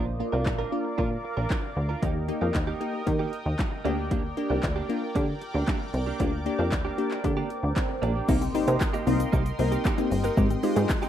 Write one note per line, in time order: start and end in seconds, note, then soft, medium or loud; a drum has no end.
0.00 0.22 A#1 loud
0.00 0.15 A#3 medium
0.00 0.15 D4 medium
0.00 0.15 F4 medium
0.00 2.00 A#4 medium
0.00 2.00 D5 medium
0.00 2.00 F5 medium
0.00 2.00 D6 medium
0.06 muted clean electric guitar stroke soft
0.20 0.62 A#3 medium
0.20 0.63 D4 medium
0.20 0.63 F4 medium
0.20 muted clean electric guitar stroke soft
0.32 0.48 C2 medium
0.32 0.44 D4 soft
0.32 0.45 F4 medium
0.32 0.44 A#4 medium
0.32 0.45 A#4 medium
0.46 0.65 A#1 loud
0.46 0.58 D5 medium
0.46 muted clean electric guitar stroke soft
0.46 kick loud
0.46 clap loud
0.58 0.71 D4 medium
0.58 0.71 F4 medium
0.58 0.72 A#4 medium
0.72 1.57 A#3 medium
0.72 1.57 D4 medium
0.72 1.57 F4 medium
0.72 muted clean electric guitar stroke soft
0.85 muted clean electric guitar stroke soft
0.98 1.17 A#2 loud
0.98 1.13 D4 medium
0.98 1.10 F4 medium
0.98 1.11 F4 loud
0.98 1.10 A#4 medium
0.98 kick loud
1.11 muted clean electric guitar stroke medium
1.24 muted clean electric guitar stroke soft
1.37 1.47 A#1 medium
1.37 1.49 D4 medium
1.37 1.49 F4 medium
1.37 1.49 A#4 medium
1.50 1.65 D4 medium
1.50 1.63 F4 medium
1.50 1.62 A#4 medium
1.50 kick loud
1.50 clap loud
1.63 muted clean electric guitar stroke soft
1.76 1.95 D2 medium
1.76 muted clean electric guitar stroke soft
1.89 2.02 D4 soft
1.89 2.01 F4 medium
1.89 2.01 A#4 medium
2.02 2.31 D#2 loud
2.02 2.17 A#3 medium
2.02 2.24 A#3 medium
2.02 2.14 A#3 medium
2.02 2.24 D#4 medium
2.02 2.15 D#4 medium
2.02 2.24 G4 medium
2.02 2.14 G4 medium
2.02 3.83 A#4 medium
2.02 3.83 D#5 medium
2.02 3.83 G5 medium
2.02 3.83 D#6 medium
2.02 kick loud
2.02 closed hi-hat medium
2.15 muted clean electric guitar stroke medium
2.28 2.71 A#3 medium
2.28 2.71 D#4 medium
2.28 2.71 G4 medium
2.28 muted clean electric guitar stroke soft
2.28 closed hi-hat soft
2.41 2.51 F2 loud
2.41 2.53 A#3 medium
2.41 2.54 D#4 medium
2.41 2.53 G4 medium
2.41 2.53 A#4 medium
2.54 2.74 D#2 medium
2.54 2.66 D#5 medium
2.54 muted clean electric guitar stroke soft
2.54 kick loud
2.54 clap loud
2.54 closed hi-hat medium
2.67 2.79 A#3 medium
2.67 2.80 D#4 medium
2.67 2.80 G4 medium
2.80 3.02 A#3 medium
2.80 3.02 D#4 medium
2.80 3.02 G4 medium
2.80 muted clean electric guitar stroke soft
2.80 closed hi-hat soft
2.93 muted clean electric guitar stroke medium
3.06 3.26 D#3 loud
3.06 3.84 A#3 medium
3.06 3.85 D#4 medium
3.06 3.19 G4 medium
3.06 3.85 A#4 loud
3.06 muted clean electric guitar stroke soft
3.06 kick loud
3.06 closed hi-hat medium
3.19 3.31 A#3 medium
3.19 3.32 D#4 medium
3.19 3.32 G4 medium
3.33 closed hi-hat medium
3.46 3.55 D#2 medium
3.46 muted clean electric guitar stroke medium
3.59 muted clean electric guitar stroke soft
3.59 kick loud
3.59 clap loud
3.59 closed hi-hat medium
3.72 muted clean electric guitar stroke soft
3.85 4.32 D2 medium
3.85 3.98 A#3 medium
3.85 4.28 A#3 medium
3.85 4.28 D4 medium
3.85 3.97 D4 medium
3.85 4.28 G4 loud
3.85 3.96 G4 loud
3.85 8.25 A#4 medium
3.85 8.25 D5 medium
3.85 8.25 G5 medium
3.85 8.25 D6 medium
3.85 closed hi-hat soft
3.98 4.09 A#3 medium
3.98 4.10 D4 medium
3.98 4.10 G4 medium
4.11 4.26 A#3 medium
4.11 4.23 A#3 medium
4.11 4.24 D4 loud
4.11 4.23 G4 loud
4.11 kick loud
4.11 closed hi-hat medium
4.11 swell medium
4.24 muted clean electric guitar stroke soft
4.37 4.80 A#3 medium
4.37 4.80 D4 medium
4.37 4.80 G4 medium
4.37 muted clean electric guitar stroke soft
4.37 closed hi-hat soft
4.50 4.60 C2 medium
4.50 4.62 A#3 medium
4.50 4.62 D4 medium
4.50 4.62 G4 medium
4.50 4.62 A#4 medium
4.63 4.82 D2 loud
4.63 4.75 D5 medium
4.63 muted clean electric guitar stroke soft
4.63 kick loud
4.63 clap loud
4.63 closed hi-hat medium
4.76 4.88 A#3 medium
4.76 4.89 D4 medium
4.76 4.89 G4 medium
4.89 5.74 A#3 medium
4.89 5.75 D4 medium
4.89 5.75 F4 medium
4.89 muted clean electric guitar stroke soft
4.89 closed hi-hat soft
5.02 muted clean electric guitar stroke soft
5.15 5.34 D3 loud
5.15 5.30 A#3 medium
5.15 5.28 D4 medium
5.15 5.27 G4 loud
5.15 5.27 G4 medium
5.15 kick loud
5.15 closed hi-hat medium
5.28 muted clean electric guitar stroke soft
5.41 muted clean electric guitar stroke soft
5.41 closed hi-hat medium
5.54 5.64 D2 medium
5.54 5.66 A#3 soft
5.54 5.67 D4 medium
5.54 5.66 G4 medium
5.67 5.82 A#3 medium
5.67 5.80 D4 medium
5.67 5.79 G4 loud
5.67 kick loud
5.67 clap loud
5.67 closed hi-hat medium
5.80 muted clean electric guitar stroke soft
5.93 6.13 C2 medium
5.93 muted clean electric guitar stroke soft
5.93 closed hi-hat medium
6.06 6.18 A#3 medium
6.06 6.19 D4 medium
6.06 6.18 G4 medium
6.19 6.48 D2 loud
6.19 6.35 A#3 loud
6.19 6.41 A#3 medium
6.19 6.32 A#3 medium
6.19 6.41 D4 medium
6.19 6.33 D4 medium
6.19 6.41 F4 medium
6.19 6.31 G4 loud
6.19 kick loud
6.19 closed hi-hat medium
6.33 muted clean electric guitar stroke soft
6.46 6.88 A#3 medium
6.46 6.89 D4 medium
6.46 6.89 G4 loud
6.46 muted clean electric guitar stroke soft
6.46 closed hi-hat medium
6.59 6.74 F2 loud
6.59 6.71 A#3 medium
6.59 6.71 D4 medium
6.59 6.71 G4 medium
6.59 6.71 A#4 medium
6.72 6.91 D2 medium
6.72 6.84 D5 medium
6.72 muted clean electric guitar stroke soft
6.72 kick loud
6.72 clap loud
6.72 closed hi-hat medium
6.85 6.97 A#3 medium
6.85 6.97 D4 medium
6.85 6.98 G4 medium
6.98 7.19 A#3 medium
6.98 7.19 D4 medium
6.98 7.20 G4 medium
6.98 muted clean electric guitar stroke soft
6.98 closed hi-hat soft
7.11 muted clean electric guitar stroke soft
7.11 clap medium
7.24 7.43 D3 loud
7.24 8.09 A#3 medium
7.24 8.09 D4 medium
7.24 7.36 G4 medium
7.24 8.10 G4 loud
7.24 muted clean electric guitar stroke soft
7.24 kick loud
7.24 closed hi-hat medium
7.37 7.49 A#3 medium
7.37 7.50 D4 medium
7.37 7.50 G4 medium
7.50 muted clean electric guitar stroke soft
7.50 closed hi-hat medium
7.63 7.73 D2 medium
7.63 muted clean electric guitar stroke medium
7.76 muted clean electric guitar stroke soft
7.76 kick loud
7.76 clap loud
7.76 closed hi-hat medium
7.89 muted clean electric guitar stroke medium
8.02 8.21 A#1 loud
8.02 8.16 A#3 medium
8.02 8.15 D4 medium
8.02 8.14 G4 medium
8.02 closed hi-hat medium
8.15 8.27 A#3 medium
8.15 8.27 D4 medium
8.15 8.27 G4 medium
8.28 8.48 C2 loud
8.28 8.43 A#3 loud
8.28 8.50 A#3 medium
8.28 8.40 A#3 loud
8.28 8.50 C4 medium
8.28 8.50 D#4 medium
8.28 8.41 D#4 loud
8.28 8.50 G4 medium
8.28 8.40 G4 loud
8.28 10.35 A#4 medium
8.28 10.35 D#5 medium
8.28 11.09 G5 medium
8.28 10.35 C6 medium
8.28 kick loud
8.28 crash loud
8.28 impact medium
8.28 shaker medium
8.41 8.53 C4 medium
8.41 muted clean electric guitar stroke soft
8.41 closed hi-hat medium
8.41 shaker medium
8.54 8.97 A#3 medium
8.54 8.97 C4 medium
8.54 8.66 D#4 medium
8.54 8.97 D#4 medium
8.54 8.97 G4 loud
8.54 muted clean electric guitar stroke medium
8.54 open hi-hat medium
8.54 shaker medium
8.67 8.77 C3 loud
8.67 8.79 A#3 medium
8.67 8.80 D#4 medium
8.67 8.79 G4 medium
8.67 8.80 A#4 medium
8.67 closed hi-hat medium
8.67 shaker medium
8.81 kick loud
8.81 clap loud
8.81 shaker medium
8.93 9.05 A#3 medium
8.93 9.06 D#4 medium
8.93 9.07 G4 medium
8.93 9.06 D#5 medium
8.93 closed hi-hat soft
8.93 shaker soft
9.06 9.26 C2 medium
9.06 9.49 A#3 medium
9.06 9.19 A#3 medium
9.06 9.49 C4 medium
9.06 9.49 D#4 medium
9.06 9.50 F4 medium
9.06 muted clean electric guitar stroke soft
9.06 open hi-hat medium
9.06 shaker medium
9.20 muted clean electric guitar stroke medium
9.20 closed hi-hat medium
9.20 shaker medium
9.32 9.52 C2 loud
9.32 9.48 A#3 medium
9.32 9.46 D#4 medium
9.32 9.44 G4 medium
9.32 kick loud
9.32 shaker medium
9.46 muted clean electric guitar stroke medium
9.46 closed hi-hat medium
9.46 shaker medium
9.59 9.78 C2 medium
9.59 9.91 A#3 medium
9.59 9.91 C4 medium
9.59 9.91 D#4 medium
9.59 9.91 A#4 loud
9.59 muted clean electric guitar stroke soft
9.59 open hi-hat medium
9.59 shaker medium
9.72 9.83 A#3 medium
9.72 9.84 D#4 medium
9.72 9.84 G4 medium
9.72 closed hi-hat medium
9.72 shaker medium
9.85 10.00 A#3 medium
9.85 9.98 D#4 medium
9.85 9.97 G4 medium
9.85 kick loud
9.85 clap loud
9.85 shaker medium
9.98 10.30 A#3 medium
9.98 10.30 C4 medium
9.98 10.10 C4 medium
9.98 10.30 D#4 medium
9.98 10.30 G4 medium
9.98 muted clean electric guitar stroke medium
9.98 closed hi-hat soft
9.98 shaker medium
10.11 10.30 G1 medium
10.11 muted clean electric guitar stroke soft
10.11 open hi-hat medium
10.11 shaker medium
10.24 10.36 A#3 medium
10.24 10.36 D#4 medium
10.24 10.36 G4 medium
10.24 10.36 A#4 medium
10.24 closed hi-hat medium
10.24 shaker medium
10.37 10.56 G#1 loud
10.37 10.58 G#3 medium
10.37 11.09 G#3 medium
10.37 10.49 G#3 loud
10.37 10.52 C4 medium
10.37 10.58 C4 medium
10.37 10.59 D#4 medium
10.37 10.50 D#4 medium
10.37 10.59 G4 loud
10.37 10.49 G4 loud
10.37 11.09 D#5 medium
10.37 11.09 C6 loud
10.37 kick loud
10.37 shaker medium
10.50 10.62 C4 medium
10.50 muted clean electric guitar stroke soft
10.50 closed hi-hat medium
10.50 shaker medium
10.63 11.06 G#3 medium
10.63 11.06 C4 medium
10.63 11.06 D#4 medium
10.63 11.06 F4 loud
10.63 10.75 G4 medium
10.63 muted clean electric guitar stroke soft
10.63 open hi-hat medium
10.63 shaker medium
10.76 10.86 G#2 loud
10.76 10.88 C4 medium
10.76 10.88 D#4 medium
10.76 10.88 G4 medium
10.76 10.88 G#4 medium
10.76 closed hi-hat medium
10.76 shaker medium
10.89 muted clean electric guitar stroke medium
10.89 kick loud
10.89 clap loud
10.89 shaker medium
11.02 11.09 C4 medium
11.02 11.09 D#4 medium
11.02 11.09 G4 medium
11.02 11.09 G5 medium
11.02 closed hi-hat soft
11.02 shaker soft